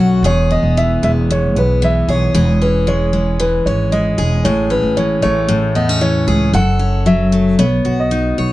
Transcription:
Already playing: B1 F#2 F#3 A3 C#4 F#5
0.00 F#4
0.23 E1 E2 G#4 C#5
0.51 B3 D#5
0.63 E1
0.77 E3 E5
1.03 E1 G#3 E5
1.30 E2 C#5
1.56 B1 B3 B4
1.82 E3 E5
2.08 B1 G#4 C#5
2.34 E1 E3 G#4
2.62 C#4 B4
2.87 G#3 C#5
3.13 G#3
3.40 E3 B4
3.66 G#1 C#4 C#5
3.92 G#3 D#5
4.18 E1 G#4
4.44 A1 A2 G#4 C#5
4.70 C#4 B4
4.83 A1
4.97 E3 C#5
5.22 A1 A3 C#5
5.48 A2
5.75 E2 B3 D#5
5.89 C#4
6.01 E3 C#5
6.27 C#2 G#4
6.53 F#1 F#2 A4 F#5
6.79 C#4
7.06 F#3 E5
7.32 A3
7.59 B1 B3 C#5
7.85 B1 F#4
8.00 D#5
8.11 D#4
8.38 B1 C#5

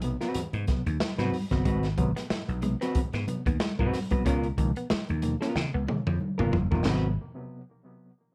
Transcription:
Already playing: B1
0.02 C3 F#3 B3, closed hi-hat, muted conga
0.21 F#3 B3 C4 F#4 B4, snare, closed hi-hat
0.34 G#2, muted slap bass stroke, closed hi-hat, muted conga, low conga
0.53 G#2, closed hi-hat
0.67 C3 F#3 B3, kick, snare, closed hi-hat, muted conga
0.86 D#2 F#3 B3, closed hi-hat
1.00 snare, high conga
1.18 G#2 C3 F#3 B3 C4 F#4 B4, snare, closed hi-hat, high conga
1.32 G#2, open hi-hat, high conga
1.51 G1 C3 F#3 B3 C4 F#4 B4, kick, snare, closed hi-hat
1.65 G#1 G#2 G#3 C4 F#4 B4, kick, closed hi-hat
1.83 snare, closed hi-hat
1.98 G#1 C3 F#3 B3, muted clean electric guitar stroke, kick, closed hi-hat
2.16 F#3 B3, snare, closed hi-hat
2.30 G#2, muted clean electric guitar stroke, muted slap bass stroke, snare, high conga
2.48 B1, closed hi-hat
2.62 C3 F#3 G#3 B3, closed hi-hat, muted conga
2.81 F#3 B3 C4 F#4 B4, snare, closed hi-hat
2.95 G#2, muted slap bass stroke, kick, closed hi-hat, muted conga, low conga
3.13 G#2 B3, snare, closed hi-hat
3.27 C3 F#3 B3, muted clean electric guitar stroke, closed hi-hat, muted conga
3.46 D#2 F#3 B3, kick, closed hi-hat
3.60 G#3, snare, high conga
3.78 G#2 C3 F#3 B3 C4 F#4 B4, kick, high conga
3.93 G#2, muted clean electric guitar stroke, snare, open hi-hat, high conga
4.11 C2 C3 F#3 B3 C4 F#4 B4, kick, closed hi-hat
4.25 C#2 B3 C#4 F4 A#4, kick, closed hi-hat
4.43 closed hi-hat
4.57 C#2 B2 D#3 F3 A#3, muted clean electric guitar stroke, kick, closed hi-hat
4.76 B3, closed hi-hat
4.90 G#3, muted slap bass stroke, snare, high conga
5.09 D#2, closed hi-hat
5.22 B2 D#3 F3 A#3, muted clean electric guitar stroke, closed hi-hat, muted conga
5.41 F3 A#3 B3 C#4 F4 A#4, snare, closed hi-hat
5.55 C#3, muted clean electric guitar stroke, snare, muted conga, low conga
5.74 C#2 B3
5.88 B2 D#3 F3 G#3 A#3, high tom, muted conga
6.07 F2 F3 A#3, high tom
6.21 high conga
6.38 F1 B2 D#3 F3 A#3 B3 F4 A#4, mid tom, high conga
6.53 F#1 F3, floor tom, high conga
6.71 G1 B2 D#3 F3 A#3 B3 F4 A#4, floor tom
6.85 G#1 C3 D#3 F#3 B3 C4 F#4 B4, snare, crash, muted conga

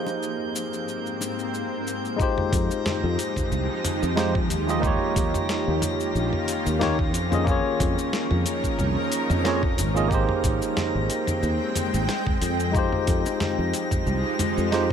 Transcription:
Already playing: G#2 A#3 C4 D#4 G4 G#4 C5 G6
0.07 high bongo, cabasa
0.23 cabasa
0.56 cabasa
0.73 cabasa
0.88 cabasa
1.06 cabasa
1.21 high bongo, cabasa
1.39 cabasa
1.54 cabasa
1.87 cabasa
2.05 cabasa
2.16 F3 G#3 D#4 F4 G4 A#6, kick, cabasa
2.22 G4 C5
2.38 mid tom
2.53 F2, kick, closed hi-hat, cabasa
2.71 cabasa
2.86 snare, mid tom, cabasa
3.03 F2
3.19 closed hi-hat, cabasa
3.36 kick, mid tom, cabasa
3.52 C2, cabasa
3.85 closed hi-hat, mid tom, cabasa
4.03 F2, cabasa
4.16 G#3 D#4 F4 G4 C5, snare, cabasa
4.35 kick, mid tom
4.50 D#2, closed hi-hat, cabasa
4.67 G#3 D#4 F4 G4 D#5, cabasa
4.80 D#3 A#3 C#4 D#4 F4, kick, mid tom, cabasa
4.85 G4 C#5
5.16 D#2, kick, closed hi-hat, cabasa
5.34 mid tom, cabasa
5.49 snare, cabasa
5.67 D#2
5.82 closed hi-hat, mid tom, cabasa
6.00 cabasa
6.15 A#1, cabasa
6.33 mid tom
6.48 closed hi-hat, cabasa
6.66 D#2, cabasa
6.80 A#3 D#4 F4 G4 C#5, snare, mid tom, cabasa
6.99 kick
7.14 F2 F3 D#4 A#4, closed hi-hat, cabasa
7.31 A#3 C#4 F4 G#4 D#5, mid tom, cabasa
7.44 A#3 C#4 F4, kick, cabasa
7.50 G#4 C#5
7.80 F2, kick, closed hi-hat, mid tom, cabasa
7.98 cabasa
8.13 snare, cabasa
8.31 F2, mid tom
8.46 closed hi-hat, cabasa
8.64 kick, cabasa
8.79 C2, mid tom, cabasa
9.12 closed hi-hat, cabasa
9.30 F2, mid tom, cabasa
9.44 A#3 C#4 F4 G#4 C#5, snare, cabasa
9.63 kick
9.78 G#1, closed hi-hat, mid tom, cabasa
9.94 A#3 C#4 F4 G#4 D#5, cabasa
10.08 A#3 C4 D#4 G4 G5, kick, cabasa
10.12 G#3 G#4 C5
10.29 mid tom
10.44 G#1, kick, closed hi-hat, cabasa
10.62 cabasa
10.77 snare, mid tom, cabasa
10.95 G#1
11.10 closed hi-hat, cabasa
11.27 mid tom, cabasa
11.43 D#2, cabasa
11.76 closed hi-hat, mid tom, cabasa
11.94 G#1, cabasa
12.09 snare, cabasa
12.27 kick, mid tom
12.41 F2, closed hi-hat, cabasa
12.60 cabasa
12.72 F3 G#3 D#4 F4 G4, kick, cabasa
12.77 G4 C5
12.92 mid tom
13.07 F2, kick, closed hi-hat, cabasa
13.26 high bongo, cabasa
13.40 snare, mid tom, cabasa
13.58 F2
13.74 closed hi-hat, cabasa
13.91 kick, mid tom, cabasa
14.07 C2, cabasa
14.39 closed hi-hat, mid tom, high bongo, cabasa
14.57 F2, cabasa
14.71 G#3 D#4 F4 G4 C5, snare, cabasa

